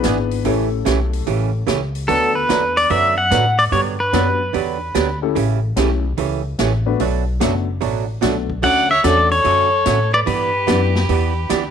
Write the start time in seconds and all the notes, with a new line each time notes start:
Already playing: B3 D4 E4 G#4 B4
0.03 G#1 E3 B3 D4 G#4, snare, closed hi-hat
0.31 open hi-hat
0.45 A1 C#3 E3 A3 C#4 E4 G4 A4, open hi-hat
0.85 B1 C#3 E3 A3 C#4 G4, snare, closed hi-hat
1.13 open hi-hat
1.27 A1 C#3 E3 A3 C#4 G4, open hi-hat
1.67 C#2 C#3 E3 A3 C#4 G4, snare, closed hi-hat
1.95 open hi-hat
2.08 D2 D3 F#3 A3 B3 D4 F#4 A4 B4, open hi-hat
2.35 B4
2.49 E2 D3 F#3 A3 D4 F#4 B4, snare, closed hi-hat
2.77 D5, open hi-hat
2.90 F#2 D3 F#3 A3 D4 F#4 B4 E5, open hi-hat
3.18 F#5
3.31 A2 D3 F#3 A3 D4 F#4 B4, snare, closed hi-hat
3.59 D5, open hi-hat
3.72 G2 D3 F#3 B3 D4 G4 C#5, open hi-hat
4.00 B4
4.12 F#2 D3 F#3 B3 D4 F#4 G4 B4, snare, closed hi-hat
4.53 E2 D3 F#3 B3 D4 G4, open hi-hat
4.95 D2 D3 F#3 B3 D4 G4, snare, closed hi-hat
5.22 A3 C#4 E4 G4 A4
5.35 A1 C#3 E3 A3 C#4 G4, open hi-hat
5.76 B1 C#3 E3 A3 C#4 E4 G4 A4, snare, closed hi-hat
6.17 C#2 C#3 E3 A3 C#4 G4, open hi-hat
6.59 A1 C#3 E3 A3 C#4 G4, snare, closed hi-hat
6.86 A3 B3 D4 F#4 B4
7.00 B1 B2 F#3 A3 D4 F#4, open hi-hat
7.40 F#1 B2 F#3 A3 B3 D4 F#4 A4, snare, closed hi-hat
7.81 A1 B2 F#3 A3 D4 F#4, open hi-hat
8.21 B1 B2 F#3 A3 B3 D4 F#4 A4, snare, closed hi-hat
8.50 kick
8.62 D2 D3 F#3 A3 C#4 D4 F#4 A4 D5 F#5, open hi-hat
8.91 C#5 E5
9.03 E2 D3 F#3 A3 C#4 D4 F#4 A4 D5, snare, closed hi-hat
9.31 A4 C#5, open hi-hat
9.44 F#2 D3 F#3 A3 C#4 F#4, open hi-hat
9.86 A2 D3 F#3 A3 C#4 F#4, snare, closed hi-hat
10.13 B4 D5
10.26 G2 E3 B3 D4 G4 B4, open hi-hat
10.67 F#2 E3 B3 D4 E4 G4 B4, snare, closed hi-hat
10.95 snare
11.09 E2 E3 B3 D4 G4, open hi-hat
11.50 D2 E3 B3 D4 G4, snare, closed hi-hat